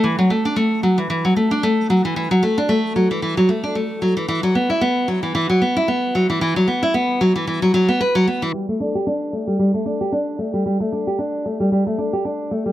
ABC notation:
X:1
M:4/4
L:1/16
Q:"Swing 16ths" 1/4=113
K:G
V:1 name="Nylon-string guitar"
E, F, A, D A,2 F, E, E, F, A, D A,2 F, E, | E, F, A, D A,2 F, E, E, F, A, D A,2 F, E, | E, F, B, E B,2 F, E, E, F, B, E B,2 F, E, | E, F, B, E B,2 F, E, E, F, F, B, B F, B, E, |
G, A, D G D2 A, G, G, A, D G D2 A, G, | G, A, D G D2 A, G, G, A, D G D2 A, G, |]